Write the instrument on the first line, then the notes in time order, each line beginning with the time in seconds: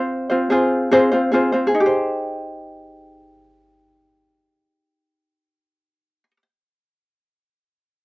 ukulele
Already playing: C4 F4 C5
0.30 C4 F4 C5
0.50 C4 F4 G#4 C5
0.91 C4 F4 G#4 C5
1.12 C4 F4 C5
1.32 C4 F4 G#4 C5
1.52 C4 F4 C5
1.67 G#4
1.74 D#4
1.80 G4
1.86 C5